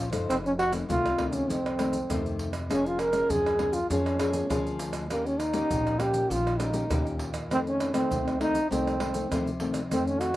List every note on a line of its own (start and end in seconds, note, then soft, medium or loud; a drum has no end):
0.00 0.27 F3 medium
0.00 0.10 C#4 medium
0.00 0.11 F4 medium
0.00 0.11 C5 medium
0.12 0.26 F#1 medium
0.12 0.39 D#4 medium
0.12 0.39 A4 medium
0.12 0.39 C5 medium
0.12 pandeiro medium
0.12 tamborim medium
0.12 maracas medium
0.29 0.81 F1 medium
0.29 0.86 F2 soft
0.29 0.36 C4 medium
0.29 pandeiro medium
0.29 tamborim medium
0.29 maracas medium
0.29 surdo soft
0.46 0.52 C#4 medium
0.46 pandeiro soft
0.46 maracas soft
0.59 0.73 F#4 loud
0.59 pandeiro medium
0.59 tamborim medium
0.72 0.83 D#3 medium
0.72 0.84 A3 medium
0.72 0.84 C4 medium
0.72 pandeiro medium
0.72 tamborim medium
0.72 maracas medium
0.89 1.41 C2 medium
0.89 1.46 C3 medium
0.89 1.07 D#3 soft
0.89 1.07 A3 medium
0.89 1.07 C4 medium
0.89 1.34 F4 loud
0.89 pandeiro medium
0.89 maracas medium
0.89 surdo loud
1.06 pandeiro soft
1.06 tamborim medium
1.06 maracas soft
1.17 1.57 D#3 medium
1.17 1.57 A3 medium
1.17 1.58 C4 soft
1.17 pandeiro medium
1.17 tamborim medium
1.17 surdo medium
1.33 1.52 C#4 medium
1.33 pandeiro medium
1.33 maracas medium
1.49 2.01 C2 medium
1.49 2.07 F2 medium
1.49 2.40 C4 medium
1.49 pandeiro medium
1.49 maracas medium
1.49 surdo medium
1.66 pandeiro soft
1.66 tamborim medium
1.66 maracas soft
1.78 1.97 D#3 medium
1.78 1.97 A3 medium
1.78 1.97 C4 medium
1.78 pandeiro medium
1.78 tamborim medium
1.78 maracas medium
1.93 pandeiro medium
1.93 maracas medium
2.10 2.71 F2 medium
2.10 2.67 C3 medium
2.10 2.48 D#3 medium
2.10 2.49 A3 medium
2.10 2.49 C4 medium
2.10 pandeiro medium
2.10 tamborim medium
2.10 maracas medium
2.10 surdo loud
2.26 pandeiro soft
2.26 maracas soft
2.39 pandeiro medium
2.53 pandeiro medium
2.53 tamborim medium
2.53 maracas medium
2.70 3.21 F1 medium
2.70 3.27 F3 medium
2.70 3.10 A#3 soft
2.70 3.10 C#4 medium
2.70 2.88 C#4 loud
2.70 3.11 G#4 medium
2.70 pandeiro medium
2.70 tamborim medium
2.70 maracas medium
2.70 surdo medium
2.86 3.01 F4 loud
2.86 pandeiro soft
2.86 maracas soft
2.99 3.32 A#4 loud
2.99 pandeiro medium
2.99 tamborim medium
2.99 maracas medium
3.12 3.54 A#3 medium
3.12 3.54 C#4 medium
3.12 3.54 G#4 medium
3.12 pandeiro medium
3.12 tamborim medium
3.12 maracas medium
3.30 3.81 F2 medium
3.30 3.87 F3 medium
3.30 3.75 G#4 loud
3.30 pandeiro medium
3.30 maracas medium
3.30 surdo medium
3.46 pandeiro soft
3.46 tamborim medium
3.46 maracas soft
3.59 3.77 A#3 medium
3.59 3.77 C#4 soft
3.59 3.78 G#4 medium
3.59 pandeiro medium
3.59 tamborim medium
3.59 surdo medium
3.73 3.89 F4 medium
3.73 pandeiro medium
3.73 maracas medium
3.90 4.41 F2 medium
3.90 4.47 F3 medium
3.90 4.15 A#3 medium
3.90 4.16 C#4 medium
3.90 4.77 C#4 medium
3.90 4.16 G#4 medium
3.90 pandeiro medium
3.90 maracas medium
3.90 surdo medium
4.06 pandeiro soft
4.06 tamborim medium
4.06 maracas soft
4.19 4.30 A#3 soft
4.19 4.30 C#4 medium
4.19 4.30 G#4 medium
4.19 pandeiro medium
4.19 tamborim medium
4.19 maracas medium
4.33 4.44 A#3 medium
4.33 4.44 C#4 medium
4.33 4.45 G#4 medium
4.33 pandeiro medium
4.33 maracas medium
4.50 5.10 D2 medium
4.50 5.07 F3 medium
4.50 5.06 A#3 medium
4.50 5.06 C#4 medium
4.50 5.06 G#4 medium
4.50 pandeiro medium
4.50 tamborim medium
4.50 maracas medium
4.50 surdo loud
4.67 pandeiro soft
4.67 maracas soft
4.79 pandeiro medium
4.79 maracas medium
4.93 pandeiro medium
4.93 tamborim medium
4.93 maracas medium
5.10 5.61 D#2 medium
5.10 5.68 D#3 medium
5.10 5.28 A#3 medium
5.10 5.39 A#3 medium
5.10 5.39 C#4 soft
5.10 5.39 G4 medium
5.10 pandeiro medium
5.10 tamborim medium
5.10 maracas medium
5.10 surdo medium
5.26 5.41 C#4 medium
5.26 pandeiro soft
5.26 maracas soft
5.39 6.01 D#4 loud
5.39 pandeiro medium
5.39 tamborim medium
5.39 maracas medium
5.53 5.95 A#3 medium
5.53 5.95 C#4 medium
5.53 5.95 G4 medium
5.53 pandeiro medium
5.53 tamborim medium
5.53 maracas medium
5.70 6.22 A#1 medium
5.70 6.27 A#2 medium
5.70 pandeiro medium
5.70 maracas medium
5.70 surdo loud
5.87 pandeiro soft
5.87 tamborim medium
5.87 maracas soft
6.00 6.39 A#3 soft
6.00 6.39 C#4 medium
6.00 6.33 G4 loud
6.00 6.39 G4 medium
6.00 pandeiro medium
6.00 tamborim medium
6.00 maracas medium
6.14 pandeiro medium
6.14 maracas medium
6.30 6.82 A#1 loud
6.30 6.88 D#3 medium
6.30 6.62 F4 medium
6.30 pandeiro medium
6.30 maracas medium
6.30 surdo medium
6.47 pandeiro soft
6.47 tamborim medium
6.47 maracas soft
6.59 6.70 A#3 medium
6.59 6.70 C#4 medium
6.59 7.21 D#4 medium
6.59 6.71 G4 medium
6.59 pandeiro medium
6.59 tamborim medium
6.59 maracas medium
6.73 6.85 A#3 medium
6.73 6.85 C#4 medium
6.73 6.85 G4 medium
6.73 pandeiro medium
6.73 maracas medium
6.90 7.51 D#2 medium
6.90 7.48 A#2 medium
6.90 7.29 A#3 medium
6.90 7.29 C#4 medium
6.90 7.30 G4 medium
6.90 pandeiro medium
6.90 tamborim medium
6.90 maracas medium
6.90 surdo loud
7.07 pandeiro soft
7.07 maracas soft
7.19 pandeiro medium
7.34 pandeiro medium
7.34 tamborim medium
7.34 maracas medium
7.50 8.08 F2 soft
7.50 8.02 F2 medium
7.50 7.91 D#3 medium
7.50 7.91 A3 soft
7.50 7.92 C4 medium
7.50 7.59 C4 medium
7.50 pandeiro medium
7.50 tamborim medium
7.50 maracas medium
7.50 surdo medium
7.67 7.94 C#4 medium
7.67 pandeiro soft
7.67 maracas soft
7.80 pandeiro medium
7.80 tamborim medium
7.80 maracas medium
7.93 8.35 D#3 medium
7.93 8.35 A3 medium
7.93 8.37 C4 medium
7.93 8.36 C4 medium
7.93 pandeiro medium
7.93 tamborim medium
7.93 maracas medium
8.11 8.62 C2 medium
8.11 8.68 C3 medium
8.11 pandeiro medium
8.11 maracas medium
8.11 surdo loud
8.28 pandeiro soft
8.28 tamborim medium
8.28 maracas soft
8.40 8.58 D#3 medium
8.40 8.58 A3 medium
8.40 8.59 C4 medium
8.40 8.69 D#4 loud
8.40 pandeiro medium
8.40 tamborim medium
8.55 pandeiro medium
8.55 maracas medium
8.71 9.22 C2 medium
8.71 9.28 F2 medium
8.71 8.96 D#3 medium
8.71 8.97 A3 medium
8.71 9.58 C4 medium
8.71 8.97 C4 medium
8.71 pandeiro medium
8.71 maracas medium
8.71 surdo medium
8.87 pandeiro soft
8.87 tamborim medium
8.87 maracas soft
9.00 9.10 D#3 soft
9.00 9.10 A3 medium
9.00 9.10 C4 medium
9.00 pandeiro medium
9.00 tamborim medium
9.14 9.26 D#3 medium
9.14 9.26 A3 medium
9.14 9.26 C4 medium
9.14 pandeiro medium
9.14 maracas medium
9.31 9.89 C3 medium
9.31 9.49 D#3 medium
9.31 9.93 F3 medium
9.31 9.49 A3 medium
9.31 9.50 C4 medium
9.31 pandeiro medium
9.31 tamborim medium
9.31 maracas medium
9.31 surdo medium
9.47 pandeiro soft
9.47 maracas soft
9.60 9.79 D#3 medium
9.60 9.79 A3 medium
9.60 9.79 C4 medium
9.60 pandeiro medium
9.74 pandeiro medium
9.74 tamborim medium
9.74 maracas medium
9.91 10.36 F2 medium
9.91 10.32 D#3 medium
9.91 10.32 A3 medium
9.91 10.09 C4 medium
9.91 10.32 C4 medium
9.91 pandeiro medium
9.91 tamborim medium
9.91 maracas medium
9.91 surdo medium
10.07 10.22 C#4 medium
10.07 pandeiro soft
10.07 maracas soft
10.20 10.36 F#4 loud
10.20 pandeiro medium
10.20 tamborim medium
10.20 maracas medium